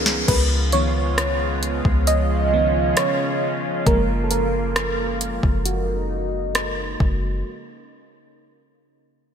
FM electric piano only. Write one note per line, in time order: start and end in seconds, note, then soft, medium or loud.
0.00 0.31 F3 medium
0.00 0.30 B3 medium
0.00 0.30 C#4 medium
0.00 0.30 D#4 medium
0.00 0.31 G#4 medium
0.00 0.30 A#4 medium
0.00 0.28 B4 medium
0.28 0.42 B4 medium
0.73 1.33 D#3 medium
0.73 1.33 F3 soft
0.73 1.33 B3 medium
0.73 2.11 C#5 loud
2.07 3.00 D#5 loud
2.53 2.93 D#3 soft
2.53 2.94 F3 soft
2.53 2.94 B3 soft
2.97 3.83 C#5 medium
3.87 5.17 F3 medium
3.87 5.17 G#3 soft
3.87 5.18 A#3 medium
3.87 4.25 A#4 medium
4.24 4.31 A4 medium
4.31 5.62 A#4 medium
5.66 6.96 F#4 medium